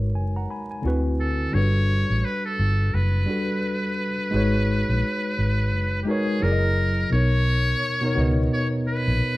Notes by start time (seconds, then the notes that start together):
Already playing: G#1 G#3 D#4 F#4 A#4 B4 C#5
0.15 F#1 G#5
0.36 F#5 A#5
0.50 G#5 B5
0.71 G#5
0.82 D2 D3 C4 E4 F#4
0.87 B4
1.20 A4
1.52 G1 G3 D4 F#4 A4 C#5
1.57 B4
2.10 A1
2.25 B4
2.46 A4
2.59 G1
2.94 F#1 B4
3.26 G3 D4 F#4
3.30 A4 B4
4.31 G#1 G#3 D#4 F#4 G#4
4.35 B4 C#5
4.89 A#1
5.38 G#1
5.73 F#1
6.03 G#3 D#4 G4
6.08 F#4 G#4 A#4 B4 C#5
6.40 F#1 F#3 E4 G#4 A#4
6.46 D5
6.52 D#5
7.10 B1 B2 B3 D#4 C#5
7.14 A#4 C#5
8.01 B2 B3 D#4 A#4
8.06 C#5
8.15 C#2 B2 B3 D#4
8.19 B4 D#5
8.53 C#5
8.88 B4
9.08 A#1